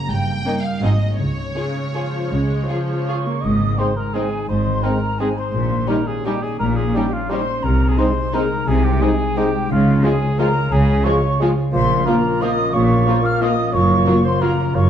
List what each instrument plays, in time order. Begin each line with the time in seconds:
Already playing: harp F#2 C#3 A#3 C#4 F#4
0.10 double bass section G1, harp G2, cello section G2, violin section G5
0.27 harp G3
0.45 harp A#3, viola section A#3 C#4, violin section D#4 A#4
0.63 harp D#4, violin section F5
0.81 double bass section G#1, harp G#2, cello section G#2, viola section F#3 C4, violin section D#4 G#4 D#5
1.00 harp C4 F#4
1.18 double bass section C#2, harp C#3, cello section C#3, violin section C#5
1.36 harp G#3
1.55 viola section C#3, harp C#4, violin section F4 G#4
1.76 harp G#4
1.94 viola section F3, violin section F4 G#4, harp F4
2.14 harp C#4
2.31 double bass section C#2, cello section C#3, harp C#3, viola section G#3
2.51 harp G#3
2.68 viola section F3, harp C#4, violin section F4 G#4
2.89 harp G#4
3.06 harp F4, violin section F4 G#4, cor anglais C#5, flute section C#6
3.25 viola section A#3, harp C#4
3.41 double bass section G#1, cello section G#2, harp G#2, cor anglais D#5, flute section D#6
3.61 harp D#3
3.78 viola section G#3, french horn section G#3 C4, bassoon C4, harp C4, violin section C4 D#4, clarinet D#4, cor anglais C5, flute section C6
3.96 harp G#4, cor anglais A#4, flute section A#5
4.14 viola section G#3, french horn section G#3, bassoon C4, violin section C4 D#4, clarinet D#4, harp D#4, cor anglais G#4, flute section G#5
4.18 french horn section C4
4.33 harp C4
4.48 double bass section G#1, cello section G#2, harp G#2, cor anglais C5, flute section C6
4.66 harp D#3
4.83 viola section G#3, french horn section G#3 C4, violin section C4 D#4, bassoon C4, clarinet D#4, cor anglais A#4, flute section A#5
5.02 harp G#4
5.19 french horn section G#3 C4, viola section G#3, violin section C4 D#4, bassoon C4, harp D#4, clarinet D#4, cor anglais G#4, flute section G#5
5.36 harp C4, cor anglais C5, flute section C6
5.54 double bass section A#1, cello section A#2, harp A#2
5.71 harp A#3
5.87 bassoon G3, viola section G3, french horn section G3 D#4, violin section C#4 D#4, harp C#4, clarinet D#4, cor anglais A#4, flute section A#5
6.07 harp G4, cor anglais G#4, flute section G#5
6.25 bassoon G3, viola section G3, french horn section G3 D#4, violin section C#4 D#4, harp D#4, clarinet D#4, cor anglais G4, flute section G5
6.42 harp C#4, cor anglais G#4, flute section G#5
6.59 double bass section A#1, harp A#2, cello section A#2, cor anglais A#4, flute section A#5
6.76 harp A#3, cor anglais G#4, flute section G#5
6.94 bassoon G3, viola section G3, french horn section G3 D#4, harp C#4, violin section C#4 D#4, clarinet D#4, cor anglais G4, flute section G5
7.11 cor anglais F4, harp G4, flute section F5
7.29 bassoon G3, french horn section G3 D#4, viola section G3, violin section C#4 D#4, clarinet D#4, harp D#4, cor anglais C5, flute section C6
7.46 harp C#4
7.62 double bass section C2, harp C3, cello section C3, cor anglais A#4, flute section A#5
7.79 harp C4
7.88 cor anglais G#4, flute section G#5
7.96 viola section G#3, french horn section G#3 D#4, bassoon G#3, violin section C4 D#4, harp D#4, clarinet D#4, cor anglais C5, flute section C6
8.15 harp G#4
8.33 bassoon G#3, viola section G#3, french horn section G#3 D#4, violin section C4 D#4, harp D#4, clarinet D#4, cor anglais A#4, flute section A#5
8.51 harp G#3
8.67 double bass section C2, cello section C3, harp C3, cor anglais G#4, flute section G#5
8.83 harp C4, cor anglais G4, flute section G5
9.01 bassoon G#3, viola section G#3, french horn section G#3 D#4, violin section C4 D#4, clarinet D#4, harp D#4, cor anglais G#4, flute section G#5
9.20 harp G#4
9.36 viola section G#3, bassoon G#3, french horn section G#3 D#4, violin section C4 D#4, clarinet D#4, harp D#4, cor anglais G4, flute section G5
9.55 harp G#3
9.70 double bass section C#2, harp C#3, cello section C#3, cor anglais F4, flute section F5
9.87 harp G#3
10.04 viola section F3, violin section G#3 F4, bassoon G#3, french horn section G#3 F4, clarinet F4, harp F4, cor anglais G#4, flute section G#5
10.22 harp C#5
10.38 viola section F3, violin section G#3 F4, bassoon G#3, french horn section G#3 F4, clarinet F4, harp G#4, cor anglais A#4, flute section A#5
10.55 harp F4
10.71 double bass section C#2, cello section C#3, harp C#3, cor anglais G#4, flute section G#5
10.88 harp G#3
11.04 viola section F3, bassoon G#3, violin section G#3 F4, french horn section G#3 F4, harp F4, clarinet F4, cor anglais C#5, flute section C#6
11.23 harp C#5
11.40 viola section F3, bassoon G#3, french horn section G#3 F4, violin section G#3 F4, clarinet F4, harp G#4
11.57 harp F4
11.72 double bass section A#1, cello section A#2, harp A#2, bassoon A#3, clarinet F4, cor anglais C5, flute section C6
11.89 harp F3
12.05 viola section F3, bassoon A#3, french horn section A#3 F4, violin section A#3 F4, harp C#4, clarinet F4, cor anglais A#4, flute section A#5
12.24 harp A#4
12.41 viola section F3, violin section A#3 F4, french horn section A#3 F4, harp F4, cor anglais D#5, flute section D#6
12.59 harp C#4
12.74 double bass section A#1, harp A#2, cello section A#2, bassoon A#3, clarinet F4, cor anglais C#5, flute section C#6
12.91 harp F3
13.06 viola section F3, french horn section A#3 F4, violin section A#3 F4, harp C#4
13.23 harp A#4, cor anglais F5, flute section F6
13.40 viola section F3, violin section A#3 F4, french horn section A#3 F4, harp F4, cor anglais D#5, flute section D#6
13.57 harp C#4
13.72 double bass section F#1, harp F#2, cello section F#2, bassoon A#3, clarinet F4, cor anglais C#5, flute section C#6
13.89 harp C#3
14.06 viola section F#3, violin section A#3 F4, french horn section A#3 F4, harp C#4
14.23 harp A#4, cor anglais C5, flute section C6
14.41 viola section F#3, violin section A#3 F4, bassoon A#3, french horn section A#3 F4, harp F4, clarinet F4, cor anglais A#4, flute section A#5
14.59 harp C#4
14.74 double bass section F#1, harp F#2, cello section F#2, bassoon A#3, clarinet F4, cor anglais C#5, flute section C#6